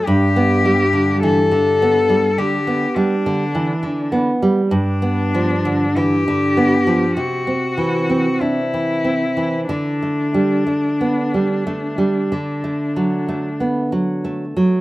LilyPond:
<<
  \new Staff \with { instrumentName = "Cello" } { \time 4/4 \key g \major \tempo 4 = 49 g'4 a'4 g'8 d'4 r8 | d'4 g'4 fis'4 e'4 | d'2. r4 | }
  \new Staff \with { instrumentName = "Nylon-string guitar" } { \clef bass \time 4/4 \key g \major g,16 b16 g16 d16 e16 d16 b16 g16 d16 b16 g16 d16 e16 d16 b16 g16 | g,16 b16 f16 d16 e16 d16 b16 f16 c16 c'16 e16 c'16 d'16 e16 c'16 e16 | d16 a16 g16 a16 b16 g16 a16 g16 d16 a16 fis16 a16 b16 fis16 a16 fis16 | }
>>